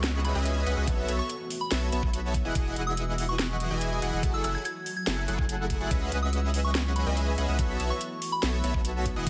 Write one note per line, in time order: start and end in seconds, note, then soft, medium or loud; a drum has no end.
0.00 0.33 C#2 medium
0.00 5.87 E3 medium
0.00 0.86 B3 medium
0.00 0.33 C#4 medium
0.00 2.31 F#4 medium
0.00 0.33 G#4 medium
0.00 0.33 B4 medium
0.00 0.33 D#5 medium
0.00 0.33 E5 medium
0.00 0.33 F#5 medium
0.00 0.22 C#6 medium
0.00 snare loud
0.00 closed hi-hat medium
0.00 downlifter medium
0.25 0.35 B5 medium
0.25 closed hi-hat medium
0.35 0.64 C#2 loud
0.35 0.64 C#4 medium
0.35 0.64 G#4 medium
0.35 0.64 B4 medium
0.35 0.64 D#5 medium
0.35 0.64 E5 medium
0.35 0.64 G#5 medium
0.46 closed hi-hat medium
0.66 0.75 C#2 medium
0.66 0.74 C#4 loud
0.66 0.74 G#4 medium
0.66 0.74 B4 medium
0.66 0.75 D#5 medium
0.66 0.75 E5 medium
0.66 0.75 F#5 loud
0.66 closed hi-hat medium
0.77 0.85 C#2 medium
0.77 0.85 C#4 medium
0.77 0.85 G#4 medium
0.77 0.85 B4 medium
0.77 0.85 D#5 medium
0.77 0.85 E5 medium
0.77 0.85 F#5 medium
0.87 1.06 B1 medium
0.87 2.33 A3 medium
0.87 1.06 B3 medium
0.87 2.33 B3 medium
0.87 1.06 F#4 medium
0.87 1.06 A4 medium
0.87 1.06 C#5 medium
0.87 1.06 E5 medium
0.87 kick loud
0.87 closed hi-hat medium
1.08 1.21 B1 medium
1.08 1.23 B3 medium
1.08 1.23 F#4 medium
1.08 1.23 A4 medium
1.08 1.23 C#5 medium
1.08 1.23 E5 medium
1.08 closed hi-hat medium
1.19 1.29 C#6 medium
1.29 closed hi-hat medium
1.50 open hi-hat medium
1.61 2.20 B5 medium
1.71 1.90 B1 loud
1.71 1.86 B3 medium
1.71 1.86 F#4 medium
1.71 1.86 A4 medium
1.71 1.86 C#5 medium
1.71 1.86 E5 medium
1.71 snare loud
1.71 closed hi-hat medium
1.92 2.01 B1 loud
1.92 2.00 B3 medium
1.92 2.00 F#4 medium
1.92 2.00 A4 medium
1.92 2.00 C#5 medium
1.92 2.00 E5 loud
1.92 closed hi-hat medium
2.03 2.43 B1 medium
2.03 2.33 B3 medium
2.03 2.33 F#4 medium
2.03 2.33 A4 medium
2.03 2.33 C#5 medium
2.03 2.33 E5 medium
2.03 kick loud
2.13 closed hi-hat medium
2.34 5.87 F#3 medium
2.34 5.87 F#4 medium
2.34 4.21 D#5 medium
2.34 kick medium
2.34 closed hi-hat medium
2.45 2.53 E1 medium
2.45 2.53 E3 loud
2.45 2.53 E4 medium
2.45 2.53 G#4 loud
2.45 2.53 D#5 loud
2.45 2.53 F#5 loud
2.55 2.74 E1 loud
2.55 2.74 E3 medium
2.55 2.74 E4 medium
2.55 2.74 G#4 medium
2.55 2.74 D#5 medium
2.55 2.74 F#5 loud
2.55 kick loud
2.55 closed hi-hat medium
2.76 3.69 E1 medium
2.76 3.68 E3 medium
2.76 3.68 E4 medium
2.76 3.68 G#4 medium
2.76 3.68 D#5 medium
2.76 3.68 F#5 loud
2.76 closed hi-hat medium
2.87 2.97 E6 medium
2.97 closed hi-hat medium
3.18 open hi-hat medium
3.29 3.58 C#6 medium
3.39 snare loud
3.39 closed hi-hat medium
3.60 closed hi-hat medium
3.71 4.00 E1 medium
3.71 4.00 E3 medium
3.71 4.00 E4 medium
3.71 4.00 G#4 medium
3.71 4.00 D#5 medium
3.71 4.00 G#5 loud
3.81 closed hi-hat medium
4.02 4.11 E1 medium
4.02 4.10 E3 loud
4.02 4.10 E4 medium
4.02 4.10 G#4 medium
4.02 4.10 D#5 medium
4.02 4.10 F#5 loud
4.02 closed hi-hat medium
4.13 4.21 E1 loud
4.13 4.21 E3 medium
4.13 4.21 E4 medium
4.13 4.21 G#4 medium
4.13 4.21 D#5 medium
4.13 4.21 F#5 medium
4.23 4.42 F#1 loud
4.23 5.89 A3 medium
4.23 kick loud
4.23 closed hi-hat medium
4.34 4.40 E6 medium
4.44 4.56 F#1 medium
4.44 4.58 F#3 medium
4.44 4.58 E4 medium
4.44 4.58 G#4 medium
4.44 4.58 A4 medium
4.44 4.58 F#5 medium
4.44 4.51 E6 medium
4.44 closed hi-hat medium
4.55 4.61 G#6 medium
4.65 4.72 G#6 medium
4.65 closed hi-hat medium
4.86 open hi-hat medium
4.97 5.55 G#6 medium
5.07 5.26 F#1 loud
5.07 5.21 F#3 medium
5.07 5.21 E4 medium
5.07 5.21 G#4 medium
5.07 5.21 A4 medium
5.07 5.21 F#5 medium
5.07 snare loud
5.07 closed hi-hat medium
5.28 5.36 F#1 loud
5.28 5.36 F#3 loud
5.28 5.36 E4 medium
5.28 5.36 G#4 medium
5.28 5.36 A4 medium
5.28 5.36 F#5 loud
5.28 closed hi-hat medium
5.39 5.78 F#1 loud
5.39 5.78 F#3 medium
5.39 5.78 E4 medium
5.39 5.78 G#4 medium
5.39 5.78 A4 medium
5.39 5.78 F#5 medium
5.39 kick loud
5.49 closed hi-hat medium
5.70 kick medium
5.70 closed hi-hat medium
5.81 5.89 F#1 medium
5.81 5.88 F#3 loud
5.81 5.88 E4 medium
5.81 5.88 G#4 loud
5.81 5.88 A4 medium
5.81 5.88 F#5 loud
5.91 6.10 C#2 medium
5.91 7.57 E3 medium
5.91 7.57 F#3 medium
5.91 7.57 B3 medium
5.91 6.10 C#4 medium
5.91 7.57 E4 medium
5.91 6.10 G#4 medium
5.91 6.09 B4 medium
5.91 6.10 D#5 medium
5.91 6.09 E5 medium
5.91 6.09 F#5 loud
5.91 kick loud
5.91 closed hi-hat medium
6.12 7.04 C#2 medium
6.12 7.04 C#4 medium
6.12 7.04 G#4 medium
6.12 7.04 B4 medium
6.12 7.04 D#5 medium
6.12 7.04 E5 medium
6.12 7.04 F#5 medium
6.12 closed hi-hat medium
6.22 6.32 E6 medium
6.33 closed hi-hat medium
6.54 open hi-hat medium
6.64 6.94 C#6 medium
6.75 snare loud
6.75 closed hi-hat medium
6.96 7.06 B5 medium
6.96 closed hi-hat medium
7.06 7.36 C#2 loud
7.06 7.35 C#4 medium
7.06 7.35 G#4 medium
7.06 7.35 B4 medium
7.06 7.35 D#5 medium
7.06 7.35 E5 medium
7.06 7.35 G#5 medium
7.17 closed hi-hat medium
7.38 7.46 C#2 medium
7.38 7.46 C#4 loud
7.38 7.46 G#4 medium
7.38 7.46 B4 medium
7.38 7.46 D#5 medium
7.38 7.46 E5 medium
7.38 7.46 F#5 loud
7.38 closed hi-hat medium
7.48 7.60 C#2 loud
7.48 7.56 C#4 medium
7.48 7.56 G#4 medium
7.48 7.56 B4 medium
7.48 7.56 D#5 medium
7.48 7.56 E5 medium
7.48 7.56 F#5 medium
7.59 7.78 B1 loud
7.59 9.04 E3 medium
7.59 9.04 A3 medium
7.59 7.77 B3 medium
7.59 9.04 B3 medium
7.59 9.04 F#4 loud
7.59 7.77 F#4 medium
7.59 7.77 A4 medium
7.59 7.77 C#5 medium
7.59 7.77 E5 medium
7.59 kick loud
7.59 closed hi-hat medium
7.80 7.92 B1 medium
7.80 7.94 B3 medium
7.80 7.94 F#4 medium
7.80 7.94 A4 medium
7.80 7.94 C#5 medium
7.80 7.94 E5 medium
7.80 closed hi-hat medium
7.90 8.00 C#6 medium
8.01 closed hi-hat medium
8.22 open hi-hat medium
8.32 8.91 B5 medium
8.43 8.62 B1 loud
8.43 8.57 B3 medium
8.43 8.57 F#4 medium
8.43 8.57 A4 medium
8.43 8.57 C#5 medium
8.43 8.57 E5 medium
8.43 snare loud
8.43 closed hi-hat medium
8.64 8.72 B1 medium
8.64 8.72 B3 loud
8.64 8.72 F#4 medium
8.64 8.72 A4 medium
8.64 8.72 C#5 medium
8.64 8.72 E5 loud
8.64 closed hi-hat medium
8.74 9.14 B1 medium
8.74 9.04 B3 medium
8.74 9.04 F#4 medium
8.74 9.04 E5 medium
8.74 kick loud
8.85 closed hi-hat medium
9.06 9.30 E3 medium
9.06 9.30 G#3 medium
9.06 9.30 F#4 medium
9.06 9.30 D#5 medium
9.06 kick medium
9.06 closed hi-hat medium
9.16 9.25 E1 medium
9.16 9.24 E3 loud
9.16 9.24 E4 medium
9.16 9.24 G#4 loud
9.16 9.24 D#5 medium
9.16 9.24 F#5 loud
9.27 9.30 E1 loud
9.27 9.30 E3 medium
9.27 9.30 E4 medium
9.27 9.30 G#4 medium
9.27 9.30 D#5 medium
9.27 9.30 F#5 loud
9.27 kick loud
9.27 closed hi-hat medium